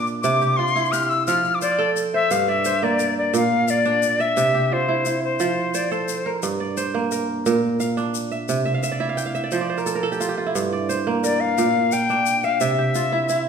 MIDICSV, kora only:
0, 0, Header, 1, 2, 480
1, 0, Start_track
1, 0, Tempo, 343446
1, 340, Time_signature, 12, 3, 24, 8
1, 18849, End_track
2, 0, Start_track
2, 0, Title_t, "Kora"
2, 0, Program_c, 0, 46
2, 0, Note_on_c, 0, 46, 92
2, 0, Note_on_c, 0, 58, 78
2, 0, Note_on_c, 0, 62, 80
2, 0, Note_on_c, 0, 70, 73
2, 0, Note_on_c, 0, 74, 71
2, 0, Note_on_c, 0, 77, 67
2, 336, Note_on_c, 0, 48, 88
2, 409, Note_off_c, 0, 46, 0
2, 581, Note_on_c, 0, 67, 60
2, 677, Note_off_c, 0, 70, 0
2, 776, Note_off_c, 0, 77, 0
2, 820, Note_on_c, 0, 65, 67
2, 883, Note_off_c, 0, 58, 0
2, 1057, Note_on_c, 0, 64, 78
2, 1167, Note_off_c, 0, 74, 0
2, 1290, Note_off_c, 0, 67, 0
2, 1295, Note_on_c, 0, 67, 64
2, 1779, Note_off_c, 0, 65, 0
2, 1783, Note_on_c, 0, 53, 77
2, 1784, Note_on_c, 0, 65, 68
2, 1849, Note_off_c, 0, 48, 0
2, 1867, Note_off_c, 0, 64, 0
2, 1966, Note_off_c, 0, 62, 0
2, 2261, Note_on_c, 0, 72, 68
2, 2498, Note_on_c, 0, 69, 79
2, 2501, Note_off_c, 0, 69, 0
2, 2501, Note_on_c, 0, 69, 67
2, 2986, Note_off_c, 0, 72, 0
2, 2991, Note_on_c, 0, 72, 60
2, 3229, Note_on_c, 0, 43, 80
2, 3269, Note_off_c, 0, 67, 0
2, 3289, Note_off_c, 0, 53, 0
2, 3468, Note_on_c, 0, 74, 61
2, 3707, Note_off_c, 0, 72, 0
2, 3713, Note_on_c, 0, 72, 68
2, 3900, Note_off_c, 0, 65, 0
2, 3948, Note_on_c, 0, 58, 74
2, 4032, Note_off_c, 0, 69, 0
2, 4184, Note_on_c, 0, 70, 62
2, 4659, Note_off_c, 0, 70, 0
2, 4661, Note_on_c, 0, 46, 80
2, 4665, Note_on_c, 0, 70, 68
2, 4730, Note_off_c, 0, 43, 0
2, 5017, Note_off_c, 0, 74, 0
2, 5146, Note_on_c, 0, 77, 61
2, 5372, Note_off_c, 0, 72, 0
2, 5387, Note_on_c, 0, 62, 77
2, 5865, Note_on_c, 0, 76, 62
2, 5949, Note_off_c, 0, 77, 0
2, 6106, Note_on_c, 0, 48, 85
2, 6172, Note_off_c, 0, 46, 0
2, 6351, Note_on_c, 0, 67, 66
2, 6444, Note_off_c, 0, 70, 0
2, 6590, Note_on_c, 0, 65, 61
2, 6644, Note_off_c, 0, 58, 0
2, 6674, Note_off_c, 0, 76, 0
2, 6826, Note_on_c, 0, 64, 78
2, 7064, Note_off_c, 0, 64, 0
2, 7069, Note_on_c, 0, 64, 59
2, 7542, Note_off_c, 0, 65, 0
2, 7544, Note_on_c, 0, 53, 75
2, 7548, Note_on_c, 0, 65, 66
2, 7613, Note_off_c, 0, 48, 0
2, 7734, Note_off_c, 0, 62, 0
2, 8028, Note_on_c, 0, 72, 63
2, 8268, Note_on_c, 0, 69, 84
2, 8325, Note_off_c, 0, 67, 0
2, 8747, Note_on_c, 0, 70, 65
2, 8830, Note_off_c, 0, 69, 0
2, 8987, Note_on_c, 0, 43, 82
2, 9054, Note_off_c, 0, 53, 0
2, 9226, Note_on_c, 0, 74, 63
2, 9259, Note_off_c, 0, 64, 0
2, 9460, Note_off_c, 0, 72, 0
2, 9465, Note_on_c, 0, 72, 69
2, 9663, Note_off_c, 0, 65, 0
2, 9705, Note_on_c, 0, 58, 74
2, 9941, Note_off_c, 0, 70, 0
2, 9947, Note_on_c, 0, 70, 61
2, 10422, Note_off_c, 0, 70, 0
2, 10427, Note_on_c, 0, 70, 68
2, 10428, Note_on_c, 0, 46, 87
2, 10494, Note_off_c, 0, 43, 0
2, 10774, Note_off_c, 0, 74, 0
2, 10901, Note_on_c, 0, 77, 71
2, 11125, Note_off_c, 0, 72, 0
2, 11140, Note_on_c, 0, 62, 80
2, 11621, Note_on_c, 0, 76, 64
2, 11705, Note_off_c, 0, 77, 0
2, 11864, Note_on_c, 0, 48, 79
2, 11934, Note_off_c, 0, 46, 0
2, 12089, Note_off_c, 0, 76, 0
2, 12095, Note_on_c, 0, 76, 68
2, 12206, Note_off_c, 0, 70, 0
2, 12219, Note_on_c, 0, 77, 70
2, 12338, Note_off_c, 0, 76, 0
2, 12344, Note_on_c, 0, 76, 69
2, 12401, Note_off_c, 0, 58, 0
2, 12460, Note_on_c, 0, 74, 68
2, 12577, Note_off_c, 0, 76, 0
2, 12578, Note_on_c, 0, 64, 70
2, 12583, Note_on_c, 0, 76, 67
2, 12662, Note_off_c, 0, 77, 0
2, 12704, Note_on_c, 0, 77, 70
2, 12818, Note_on_c, 0, 79, 67
2, 12934, Note_off_c, 0, 77, 0
2, 12940, Note_on_c, 0, 77, 63
2, 13023, Note_off_c, 0, 76, 0
2, 13063, Note_on_c, 0, 76, 70
2, 13183, Note_off_c, 0, 74, 0
2, 13189, Note_on_c, 0, 74, 69
2, 13302, Note_on_c, 0, 53, 75
2, 13309, Note_on_c, 0, 72, 70
2, 13374, Note_off_c, 0, 48, 0
2, 13386, Note_off_c, 0, 64, 0
2, 13386, Note_off_c, 0, 76, 0
2, 13422, Note_off_c, 0, 74, 0
2, 13428, Note_on_c, 0, 74, 70
2, 13488, Note_off_c, 0, 62, 0
2, 13545, Note_off_c, 0, 72, 0
2, 13550, Note_on_c, 0, 72, 64
2, 13663, Note_on_c, 0, 70, 72
2, 13783, Note_on_c, 0, 69, 67
2, 13904, Note_off_c, 0, 70, 0
2, 13909, Note_on_c, 0, 70, 68
2, 14014, Note_off_c, 0, 69, 0
2, 14019, Note_on_c, 0, 69, 78
2, 14022, Note_off_c, 0, 69, 0
2, 14022, Note_on_c, 0, 69, 65
2, 14120, Note_off_c, 0, 79, 0
2, 14142, Note_on_c, 0, 67, 66
2, 14262, Note_on_c, 0, 65, 67
2, 14335, Note_off_c, 0, 77, 0
2, 14372, Note_off_c, 0, 67, 0
2, 14378, Note_on_c, 0, 67, 69
2, 14495, Note_off_c, 0, 65, 0
2, 14501, Note_on_c, 0, 65, 62
2, 14625, Note_on_c, 0, 64, 65
2, 14749, Note_on_c, 0, 43, 78
2, 14814, Note_off_c, 0, 53, 0
2, 14976, Note_off_c, 0, 74, 0
2, 14991, Note_on_c, 0, 74, 63
2, 15210, Note_off_c, 0, 72, 0
2, 15222, Note_on_c, 0, 72, 67
2, 15468, Note_on_c, 0, 58, 79
2, 15552, Note_off_c, 0, 69, 0
2, 15688, Note_off_c, 0, 70, 0
2, 15704, Note_on_c, 0, 70, 65
2, 16182, Note_off_c, 0, 70, 0
2, 16186, Note_on_c, 0, 46, 82
2, 16187, Note_on_c, 0, 70, 67
2, 16255, Note_off_c, 0, 43, 0
2, 16352, Note_off_c, 0, 67, 0
2, 16539, Note_off_c, 0, 74, 0
2, 16616, Note_off_c, 0, 65, 0
2, 16671, Note_on_c, 0, 77, 67
2, 16754, Note_off_c, 0, 64, 0
2, 16882, Note_off_c, 0, 72, 0
2, 16907, Note_on_c, 0, 62, 80
2, 17386, Note_on_c, 0, 76, 62
2, 17470, Note_off_c, 0, 77, 0
2, 17621, Note_on_c, 0, 48, 78
2, 17695, Note_off_c, 0, 46, 0
2, 17869, Note_on_c, 0, 67, 60
2, 17966, Note_off_c, 0, 70, 0
2, 18102, Note_on_c, 0, 65, 64
2, 18164, Note_off_c, 0, 58, 0
2, 18186, Note_off_c, 0, 76, 0
2, 18341, Note_on_c, 0, 64, 74
2, 18575, Note_off_c, 0, 64, 0
2, 18581, Note_on_c, 0, 64, 64
2, 18849, Note_off_c, 0, 48, 0
2, 18849, Note_off_c, 0, 62, 0
2, 18849, Note_off_c, 0, 64, 0
2, 18849, Note_off_c, 0, 65, 0
2, 18849, Note_off_c, 0, 67, 0
2, 18849, End_track
0, 0, End_of_file